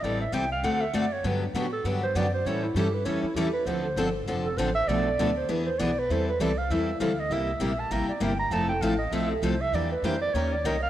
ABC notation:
X:1
M:4/4
L:1/8
Q:"Swing" 1/4=198
K:Am
V:1 name="Clarinet"
d e g f ^f e d ^c | B D ^F A B c d c | ^c E G B c E G B | c3 z2 A c e |
d3 c B c d B | c B d f e2 f ^d | e3 a _b d g b | a g f ^d e G c e |
d B c d ^c d ^d f |]
V:2 name="Steel-string acoustic guitar"
[E,G,CEA] z [E,G,CEA] z [D,A,C^FA] z [D,A,CFA] z | [D,^F,B,DG] z [D,F,B,DG] z [D,F,B,DG] z [D,F,B,DG] z | [E,G,^CEA] z [E,G,CEA] z [E,G,CEA] z [E,G,CEA] z | [D,F,CDA] z [D,F,CDA] z [D,F,CDA] z [D,F,CDA] z |
[B,,F,A,DA] z [B,,F,A,DA] z [E,B,D^G] z [E,B,DG] z | [E,G,CEA] z [E,G,CEA] z [E,G,CEA] z [E,G,CEA] z | [C,G,_B,EG] z [C,G,B,EG] z [C,G,B,EG] z [C,G,B,EG] z | [F,A,CEA] z [F,A,CEA] z [F,A,CEA] z [F,A,CEA] z |
[E,_B,DG] z [E,B,DG] z [^D,^A,^CG^A] z [D,A,CGA] z |]
V:3 name="Steel-string acoustic guitar"
z8 | [D,^F,B,DG] z [D,F,B,DG] z [D,F,B,DG] z [D,F,B,DG] z | [E,G,^CEA] z [E,G,CEA] z [E,G,CEA] z [E,G,CEA] z | [D,F,CDA] z [D,F,CDA] z [D,F,CDA] z [D,F,CDA] z |
[B,,F,A,DAB] z [B,,F,A,DAB] z [E,B,D^GB] z [E,B,DGB] z | [E,G,CEA] z [E,G,CEA] z [E,G,CEA] z [E,G,CEA] z | [C,G,_B,EG] z [C,G,B,EG] z [C,G,B,EG] z [C,G,B,EG] z | [F,CEA] z [F,CEA] z [F,CEA] z [F,CEA] z |
[E,G,DE_B] z [E,G,DEB] z [^D,^A,^CG^A] z [D,A,CGA] z |]
V:4 name="Upright bass" clef=bass
A,,,2 C,,2 D,,2 ^F,,2 | G,,2 A,,2 G,,2 ^F,,2 | A,,2 G,,2 F,, z E,,2 | D,,2 G,,,2 F,,,2 A,,,2 |
B,,,2 D,,2 E,,2 B,,,2 | E,,2 C,,2 E,,2 D,,2 | C,,2 _B,,,2 A,,, z G,,,2 | F,,,2 A,,,2 B,,,2 C,,2 |
E,,2 F,,2 ^D,,2 ^B,,,2 |]